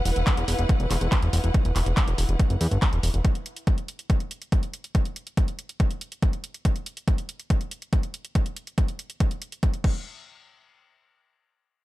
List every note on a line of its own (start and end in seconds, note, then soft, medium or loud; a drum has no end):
0.00 3.25 E4 medium
0.00 3.25 B4 medium
0.00 3.25 F#5 medium
0.05 0.12 E1 loud
0.05 open hi-hat loud
0.16 0.22 E1 medium
0.16 closed hi-hat medium
0.27 kick loud
0.27 clap loud
0.27 closed hi-hat medium
0.37 0.44 E1 medium
0.37 closed hi-hat medium
0.48 0.54 E1 loud
0.48 open hi-hat loud
0.59 0.65 E1 medium
0.59 closed hi-hat medium
0.69 kick loud
0.69 closed hi-hat medium
0.80 0.86 E1 medium
0.80 closed hi-hat soft
0.91 0.97 E1 loud
0.91 clap medium
0.91 open hi-hat loud
1.01 1.07 E1 medium
1.01 closed hi-hat soft
1.12 kick loud
1.12 clap loud
1.12 closed hi-hat medium
1.22 1.29 E1 medium
1.22 closed hi-hat medium
1.33 1.39 E1 loud
1.33 open hi-hat loud
1.44 1.50 E1 medium
1.44 closed hi-hat medium
1.54 kick loud
1.54 closed hi-hat medium
1.65 1.71 E1 medium
1.65 closed hi-hat medium
1.76 1.82 E1 loud
1.76 clap medium
1.76 open hi-hat loud
1.86 1.93 E1 medium
1.86 closed hi-hat medium
1.97 kick loud
1.97 clap loud
1.97 closed hi-hat medium
2.08 2.14 E1 medium
2.08 closed hi-hat medium
2.18 2.25 E1 loud
2.18 open hi-hat loud
2.29 2.35 E1 medium
2.29 closed hi-hat medium
2.39 kick loud
2.39 closed hi-hat medium
2.50 2.56 F#1 medium
2.50 closed hi-hat medium
2.61 2.67 E2 loud
2.61 open hi-hat loud
2.71 2.78 G1 medium
2.71 closed hi-hat soft
2.82 kick loud
2.82 clap loud
2.82 closed hi-hat medium
2.93 2.99 E1 medium
2.93 closed hi-hat soft
3.03 3.10 E1 loud
3.03 open hi-hat loud
3.14 3.20 E1 medium
3.14 closed hi-hat soft
3.25 kick loud
3.25 closed hi-hat medium
3.35 closed hi-hat soft
3.46 closed hi-hat medium
3.56 closed hi-hat medium
3.67 kick loud
3.67 closed hi-hat medium
3.78 closed hi-hat soft
3.88 closed hi-hat medium
3.99 closed hi-hat soft
4.10 kick loud
4.10 closed hi-hat medium
4.20 closed hi-hat soft
4.31 closed hi-hat medium
4.42 closed hi-hat soft
4.52 kick loud
4.52 closed hi-hat medium
4.63 closed hi-hat soft
4.74 closed hi-hat medium
4.84 closed hi-hat soft
4.95 kick loud
4.95 closed hi-hat medium
5.05 closed hi-hat soft
5.16 closed hi-hat medium
5.27 closed hi-hat medium
5.37 kick loud
5.37 closed hi-hat medium
5.48 closed hi-hat medium
5.59 closed hi-hat medium
5.69 closed hi-hat medium
5.80 kick loud
5.80 closed hi-hat medium
5.91 closed hi-hat soft
6.01 closed hi-hat medium
6.12 closed hi-hat medium
6.22 kick loud
6.22 closed hi-hat medium
6.33 closed hi-hat soft
6.44 closed hi-hat medium
6.54 closed hi-hat medium
6.65 kick loud
6.65 closed hi-hat medium
6.76 closed hi-hat medium
6.86 closed hi-hat medium
6.97 closed hi-hat medium
7.08 kick loud
7.08 closed hi-hat medium
7.18 closed hi-hat medium
7.29 closed hi-hat medium
7.39 closed hi-hat medium
7.50 kick loud
7.50 closed hi-hat medium
7.61 closed hi-hat medium
7.71 closed hi-hat medium
7.82 closed hi-hat medium
7.93 kick loud
7.93 closed hi-hat medium
8.03 closed hi-hat medium
8.14 closed hi-hat medium
8.25 closed hi-hat medium
8.35 kick loud
8.35 closed hi-hat medium
8.46 closed hi-hat medium
8.56 closed hi-hat medium
8.67 closed hi-hat medium
8.78 kick loud
8.78 closed hi-hat medium
8.88 closed hi-hat medium
8.99 closed hi-hat medium
9.10 closed hi-hat medium
9.20 kick loud
9.20 closed hi-hat medium
9.31 closed hi-hat medium
9.42 closed hi-hat medium
9.52 closed hi-hat medium
9.63 kick loud
9.63 closed hi-hat medium
9.73 closed hi-hat medium
9.84 kick loud
9.84 crash medium